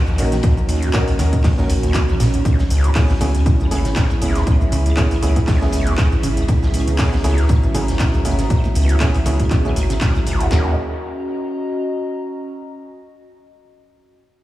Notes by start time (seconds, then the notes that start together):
Already playing: A#3 C#4 D#4 F#4 C#5 D#5 A#5
0.07 D#2, ride, cabasa
0.18 D#1 A#1 C#4 D#4 F#4 A#4, open hi-hat, ride, cabasa
0.32 D#3, snare, closed hi-hat, cabasa
0.43 D#2, kick, closed hi-hat, ride, cabasa
0.57 D#2, cabasa
0.69 D#2, open hi-hat, ride, cabasa
0.82 E2, closed hi-hat, cabasa
0.93 D#2 C#4 D#4 F#4 A#4, kick, snare, clap, closed hi-hat, ride, cabasa
1.08 D#2, open hi-hat, cabasa
1.19 D#2 D#3 C#4 D#4 F#4 A#4, snare, open hi-hat, ride, cabasa
1.33 D#2, kick, closed hi-hat, cabasa
1.44 D#2, kick, snare, clap, closed hi-hat, open hi-hat, cabasa
1.58 D#2 C#4 D#4 F#4 A#4, snare, cabasa
1.69 A#1 D#2, snare, open hi-hat, ride, cabasa
1.83 D#2, closed hi-hat, cabasa
1.94 D#3, kick, snare, clap, closed hi-hat, ride, cabasa
2.09 E2, cabasa
2.20 A#1 A#2, snare, open hi-hat, ride, cabasa
2.34 D#1, closed hi-hat, cabasa
2.45 C#2 B3 E4 G#4, kick, closed hi-hat, ride, cabasa
2.59 C#2, snare, cabasa
2.64 G#4 B5
2.70 C#2, open hi-hat, ride, cabasa
2.82 D#2 E5, closed hi-hat, cabasa
2.95 C#2 B3 C#4 E4 G#4, kick, snare, clap, closed hi-hat, open hi-hat, cabasa
3.09 C#2, snare, cabasa
3.21 C#2 C#3 B3 C#4 E4 G#4, snare, open hi-hat, ride, cabasa
3.35 C#2, closed hi-hat, cabasa
3.46 C#2, kick, closed hi-hat, ride, cabasa
3.60 C#2, cabasa
3.71 G#1 C#2 B3 C#4 E4 G#4, snare, open hi-hat, ride, cabasa
3.85 C#3, snare, closed hi-hat, cabasa
3.96 C#2, kick, snare, clap, closed hi-hat, ride, cabasa
4.10 C#2, ride, cabasa
4.21 G#1 C#2 B3 C#4 E4 G#4, open hi-hat, ride, cabasa
4.35 D#2, snare, closed hi-hat, cabasa
4.47 C#2, kick, closed hi-hat, ride, cabasa
4.61 C#2, cabasa
4.72 C#2 C#3, open hi-hat, ride, cabasa
4.86 C#2, closed hi-hat, cabasa
4.97 C#2 B3 C#4 E4 G#4, kick, snare, clap, closed hi-hat, ride, cabasa
5.11 C#2, open hi-hat, cabasa
5.22 C#2 B3 C#4 E4 G#4, open hi-hat, ride, cabasa
5.36 C#3, kick, closed hi-hat, cabasa
5.47 C#2, kick, snare, clap, closed hi-hat, open hi-hat, cabasa
5.61 C#2 B3 C#4 E4 G#4, snare, cabasa
5.72 G#1 C#2, snare, open hi-hat, ride, cabasa
5.87 D#2, closed hi-hat, cabasa
5.98 C#2, kick, snare, clap, closed hi-hat, ride, cabasa
6.12 C#2, cabasa
6.20 G#1 C#3 A#5, open hi-hat, ride, cabasa
6.37 C#2, closed hi-hat, cabasa
6.48 C#2 F#4, kick, closed hi-hat, ride, cabasa
6.62 C#2, snare, cabasa
6.74 C#2, open hi-hat, ride, cabasa
6.88 C#3, closed hi-hat, cabasa
6.99 C#2 B3 C#4 E4 G#4, kick, snare, clap, closed hi-hat, open hi-hat, cabasa
7.13 C#2, snare, cabasa
7.24 C#2 B3 C#4 E4 G#4, snare, open hi-hat, ride, cabasa
7.38 D#2, closed hi-hat, cabasa
7.49 C#2, kick, closed hi-hat, ride, cabasa
7.63 C#2, cabasa
7.74 G#1 C#3 B3 C#4 E4 G#4, snare, open hi-hat, ride, cabasa
7.88 C#2, snare, closed hi-hat, cabasa
7.99 C#2, kick, snare, clap, closed hi-hat, ride, cabasa
8.14 C#2, ride, cabasa
8.25 G#1 C#2 B3 C#4 E4 G#4, open hi-hat, ride, cabasa
8.38 C#3, snare, closed hi-hat, cabasa
8.50 C#2, kick, closed hi-hat, ride, cabasa
8.64 C#2, snare, cabasa
8.75 C#2, open hi-hat, ride, cabasa
8.89 D#2, closed hi-hat, cabasa
9.00 C#2 B3 C#4 E4 G#4, kick, snare, clap, closed hi-hat, ride, cabasa
9.14 C#2, open hi-hat, cabasa
9.26 C#2 C#3 B3 C#4 E4 G#4, open hi-hat, ride, cabasa
9.40 C#2, kick, closed hi-hat, cabasa
9.51 C#2, kick, clap, closed hi-hat, ride, cabasa
9.65 C#2 B3 C#4 E4 G#4, cabasa
9.76 G#1 C#2, snare, open hi-hat, ride, cabasa
9.90 C#3, snare, closed hi-hat, cabasa
10.01 C#2, kick, snare, clap, closed hi-hat, ride, cabasa
10.15 C#2, ride, cabasa
10.26 G#1 C#2, open hi-hat, ride, cabasa
10.40 D#2, closed hi-hat, cabasa
10.52 D#2 C#4 D#4 F#4 A#4, snare, clap, floor tom
10.60 F#4
10.68 D#5
10.75 A#5